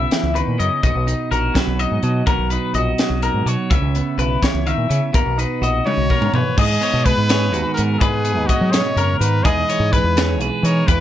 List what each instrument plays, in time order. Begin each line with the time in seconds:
Already playing: clean electric guitar C#3 B3 E4 E5
0.11 clean electric guitar E3, snare, closed hi-hat
0.23 fingered electric bass C#2
0.35 clean electric guitar D#3 B4, closed hi-hat
0.48 fingered electric bass A#2
0.58 fingered electric bass F#2, clean electric guitar C#3 D#5, closed hi-hat
0.83 fingered electric bass B1, clean electric guitar B2 D#5, kick, closed hi-hat
0.95 fingered electric bass B1
1.07 clean electric guitar D#4, closed hi-hat
1.31 fingered electric bass A#1, clean electric guitar F#4 A#4, closed hi-hat
1.54 clean electric guitar F#3 B4, kick, snare, closed hi-hat
1.67 fingered electric bass B1
1.79 clean electric guitar D#4 D#5, closed hi-hat
1.92 fingered electric bass G#2
2.03 fingered electric bass B2, clean electric guitar F#3, closed hi-hat
2.27 clean electric guitar B2 A#4, kick, closed hi-hat
2.38 fingered electric bass B1
2.50 clean electric guitar D#4 B4, closed hi-hat
2.74 fingered electric bass A#1, clean electric guitar F#4 D#5, closed hi-hat
2.98 clean electric guitar F#3, snare, closed hi-hat
3.10 fingered electric bass B1
3.22 clean electric guitar D#4 A#4, closed hi-hat
3.34 fingered electric bass G#2
3.46 fingered electric bass B2, clean electric guitar F#3 C#5, closed hi-hat
3.70 fingered electric bass C#2, clean electric guitar C#3 E5, kick, closed hi-hat
3.82 fingered electric bass C#2
3.95 clean electric guitar B3, closed hi-hat
4.18 fingered electric bass B1, clean electric guitar E4 B4, closed hi-hat
4.42 clean electric guitar E3 C#5, kick, snare, closed hi-hat
4.54 fingered electric bass C#2
4.66 clean electric guitar D#3 E5, closed hi-hat
4.78 fingered electric bass A#2
4.89 clean electric guitar C#3, fingered electric bass C#3, closed hi-hat
5.13 fingered electric bass B1, clean electric guitar B2 A#4, kick, closed hi-hat
5.26 fingered electric bass B1
5.38 clean electric guitar D#4 B4, closed hi-hat
5.61 fingered electric bass A#1, clean electric guitar F#4 D#5, closed hi-hat
5.85 clean electric guitar C#3, trumpet C#5, high tom
5.97 fingered electric bass B1
6.09 clean electric guitar B2 A#4, kick
6.21 fingered electric bass G#2, mid tom
6.32 clean electric guitar A#2 C#5, fingered electric bass B2, trumpet B4, floor tom
6.57 clean electric guitar G#2 G#4, fingered electric bass G#2, trumpet D#5, kick, crash
6.81 clean electric guitar B3 C#5, closed hi-hat
6.94 fingered electric bass B2
7.05 clean electric guitar G#3 B4, trumpet B4, kick, closed hi-hat
7.18 fingered electric bass G#2
7.29 clean electric guitar G#4 C#5, snare, closed hi-hat
7.52 fingered electric bass D#2, clean electric guitar D#3 F#4 B4, closed hi-hat
7.74 clean electric guitar B3 A#4, trumpet A#4, closed hi-hat
7.78 fingered electric bass G#2
7.93 trumpet A#4
7.99 clean electric guitar G#2 B4, fingered electric bass G#2, trumpet G#4, kick, closed hi-hat
8.24 clean electric guitar B3, closed hi-hat
8.38 fingered electric bass D#2
8.47 clean electric guitar G#3 D#5, trumpet F#4, kick, closed hi-hat
8.61 fingered electric bass F#3
8.72 clean electric guitar B2, trumpet C#5, snare, closed hi-hat
8.96 fingered electric bass F#2, clean electric guitar C#3 A#4, closed hi-hat
9.19 fingered electric bass G#2, clean electric guitar D#3, trumpet B4, closed hi-hat
9.44 fingered electric bass E2, clean electric guitar E3 G#3 D#4 G#4 B4, trumpet D#5, kick, closed hi-hat
9.69 clean electric guitar D#4 C#5, closed hi-hat
9.80 fingered electric bass G#2
9.92 clean electric guitar G#3 B4, trumpet B4, kick, closed hi-hat
10.04 fingered electric bass E2
10.17 clean electric guitar G#4 C#5, snare, closed hi-hat
10.40 fingered electric bass B1, clean electric guitar B2 G#4 B4, closed hi-hat
10.63 fingered electric bass E3, clean electric guitar D#4 A#4, trumpet C#5, closed hi-hat
10.87 fingered electric bass E2, clean electric guitar E3 B4, trumpet B4, kick, closed hi-hat